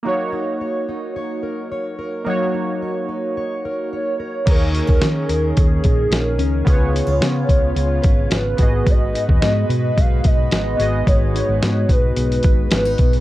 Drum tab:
CC |----------------|----------------|x---------------|----------------|
HH |----------------|----------------|x-x-x-x-x-x-x-x-|x-x-x-x-x-x-x-x-|
SD |----------------|----------------|----o-------o---|----o-------o---|
BD |----------------|----------------|o--o----o-o-----|o-----o---o---o-|

CC |----------------|----------------|
HH |x-x-x-x-x-x-x-x-|x-x-x-x-xxx-x-xx|
SD |----o-------o---|----o-------o---|
BD |o--o----o-o-----|o-----o---o---o-|